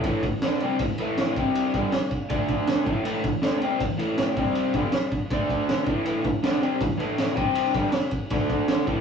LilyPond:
<<
  \new Staff \with { instrumentName = "Overdriven electric guitar" } { \clef bass \time 4/4 \key d \major \tempo 4 = 160 <a, e a>8 <a, e>8 <d a d'>8 <c g c'>8 <a, e>8 <a, e a>4 <c g c'>8~ | <c g c'>8 <g, d g>8 r4 <d a d'>4. <a, e a>8 | <a, e a>8 <a, e>8 <d a d'>8 <c g c'>8 <a, e>8 <a, e a>4 <c g c'>8~ | <c g c'>8 <g, d g>8 r4 <d a d'>4. <a, e a>8 |
<a, e a>8 <a, e>8 <d a d'>8 <c g c'>8 <a, e>8 <a, e a>4 <c g c'>8~ | <c g c'>8 <g, d g>8 r4 <d a d'>4. <a, e a>8 | }
  \new DrumStaff \with { instrumentName = "Drums" } \drummode { \time 4/4 <bd cymr>8 <bd cymr>8 <cymr sn>8 cymr8 <bd cymr>8 cymr8 <cymr sn>8 <bd cymr>8 | cymr8 <bd cymr>8 <cymr sn>8 <bd cymr>8 <bd cymr>8 <bd cymr>8 <cymr sn>8 <bd cymr>8 | cymr8 <bd cymr>8 <cymr sn>8 cymr8 <bd cymr>8 cymr8 <cymr sn>8 <bd cymr>8 | cymr8 <bd cymr>8 <cymr sn>8 <bd cymr>8 <bd cymr>8 <bd cymr>8 <cymr sn>8 <bd cymr>8 |
cymr8 <bd cymr>8 <cymr sn>8 cymr8 <bd cymr>8 cymr8 <cymr sn>8 <bd cymr>8 | cymr8 <bd cymr>8 <cymr sn>8 <bd cymr>8 <bd cymr>8 <bd cymr>8 <cymr sn>8 <bd cymr>8 | }
>>